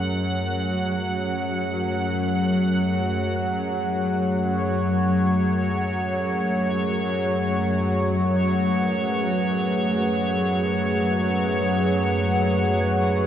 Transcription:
0.00 13.27 F#2 medium
0.00 13.27 F#3 medium
0.00 13.27 A3 medium
0.00 13.27 G#4 medium
0.00 9.02 C#5 medium
0.00 4.50 F#5 medium
0.00 13.27 F#5 medium
4.51 13.27 C#5 medium
8.67 13.27 B4 medium

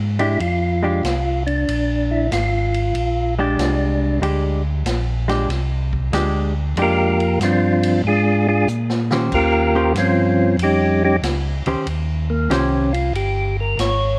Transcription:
0.00 0.38 G#2 medium
0.19 0.38 G#3 medium
0.19 0.38 D4 medium
0.19 0.40 E4 medium
0.19 0.38 G4 medium
0.19 ride soft
0.40 1.02 F2 medium
0.40 1.43 F4 medium
0.40 ride medium
0.83 1.01 G#3 medium
0.83 1.02 D4 medium
0.83 1.02 G4 medium
1.03 1.65 C2 medium
1.03 snare medium
1.03 hi-hat pedal medium
1.03 ride medium
1.47 2.27 D4 medium
1.47 ride soft
1.68 2.29 A#1 medium
1.68 ride medium
2.11 2.31 E4 medium
2.31 2.93 G#1 medium
2.31 3.35 F4 medium
2.31 snare medium
2.31 hi-hat pedal medium
2.31 ride medium
2.74 ride soft
2.94 3.56 A#1 medium
2.94 ride medium
3.39 4.19 G#3 medium
3.39 4.19 D4 medium
3.39 4.20 D4 medium
3.39 4.19 G4 medium
3.57 4.20 C2 medium
3.57 snare medium
3.57 hi-hat pedal medium
3.57 ride medium
4.21 4.83 D2 medium
4.21 4.61 G#3 medium
4.21 4.61 D4 medium
4.21 4.61 G4 medium
4.21 ride medium
4.85 5.47 A#1 loud
4.85 snare medium
4.85 hi-hat pedal medium
4.85 ride medium
5.28 5.47 G#3 medium
5.28 5.48 D4 medium
5.28 5.48 G4 medium
5.28 snare soft
5.28 ride soft
5.49 6.11 C2 medium
5.49 snare soft
5.49 ride medium
5.93 kick medium
6.12 6.75 D2 medium
6.12 6.52 G#3 medium
6.12 6.52 D4 medium
6.12 6.53 G4 medium
6.12 snare medium
6.12 hi-hat pedal medium
6.12 ride medium
6.76 7.38 F2 medium
6.76 7.16 G#3 medium
6.76 7.16 D4 medium
6.76 7.17 G4 medium
6.76 ride medium
6.81 7.39 A#3 medium
6.81 7.39 F4 medium
6.81 7.39 G4 medium
6.81 7.39 A#4 medium
7.20 ride soft
7.40 8.02 G2 medium
7.40 8.02 F3 medium
7.40 8.02 F4 medium
7.40 snare medium
7.40 hi-hat pedal medium
7.40 ride medium
7.44 8.02 C4 medium
7.44 8.02 D4 medium
7.83 ride medium
8.04 8.66 G#2 medium
8.04 8.47 F4 medium
8.04 8.47 G#4 medium
8.08 8.47 G#3 medium
8.08 8.47 D4 medium
8.48 8.68 G#3 medium
8.48 8.68 D4 medium
8.48 8.68 F4 medium
8.48 8.68 G#4 medium
8.67 9.30 A#2 medium
8.67 hi-hat pedal medium
8.90 snare medium
9.11 9.74 D#3 medium
9.11 9.74 C#4 medium
9.11 9.75 G4 medium
9.11 9.75 C5 medium
9.11 snare medium
9.32 9.94 D#2 medium
9.32 9.93 A#3 medium
9.32 9.93 F4 medium
9.32 9.93 G4 medium
9.32 9.93 A#4 medium
9.32 kick medium
9.32 crash medium
9.75 9.94 D#3 medium
9.75 9.94 C#4 medium
9.75 9.94 G4 medium
9.75 9.94 C5 medium
9.94 10.57 G2 loud
9.94 10.56 F3 medium
9.94 10.56 C#4 medium
9.94 10.56 F4 medium
9.94 snare medium
9.94 hi-hat pedal medium
9.94 ride medium
9.98 10.57 C4 medium
10.57 11.20 F2 medium
10.57 ride medium
10.63 11.03 G3 medium
10.63 11.03 C#4 medium
10.63 11.03 D#4 medium
10.63 11.03 G4 medium
11.05 11.17 G3 medium
11.05 11.16 C#4 medium
11.05 11.17 D#4 medium
11.05 11.16 G4 medium
11.22 11.62 C#2 medium
11.22 snare medium
11.22 hi-hat pedal medium
11.22 ride medium
11.66 11.76 C#2 soft
11.66 11.85 D#3 medium
11.66 11.85 C#4 medium
11.66 11.85 G4 medium
11.66 11.86 C5 medium
11.66 ride soft
11.86 12.48 D#2 medium
11.86 ride medium
12.30 12.50 A#3 medium
12.50 13.12 C2 medium
12.50 12.89 D#3 medium
12.50 12.89 C#4 medium
12.50 12.93 C#4 medium
12.50 12.90 G4 medium
12.50 12.90 C5 medium
12.50 snare medium
12.50 hi-hat pedal medium
12.50 ride medium
12.93 13.13 F4 medium
12.93 ride medium
13.14 13.76 G1 medium
13.14 13.57 G4 medium
13.14 ride medium
13.60 13.79 A#4 medium
13.78 14.19 G#1 medium
13.78 14.19 C#5 loud
13.78 snare medium
13.78 hi-hat pedal medium
13.78 ride medium

